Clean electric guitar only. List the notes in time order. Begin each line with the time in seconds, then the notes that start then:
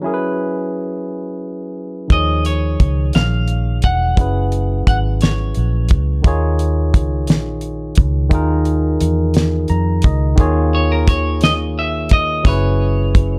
2.12 D#5
2.46 C#5
3.15 F5
3.84 F#5
4.88 F#5
5.22 C#5
10.75 C#5
10.92 A#4
11.09 C#5
11.44 D#5
11.79 E5
12.13 D#5
12.47 C#5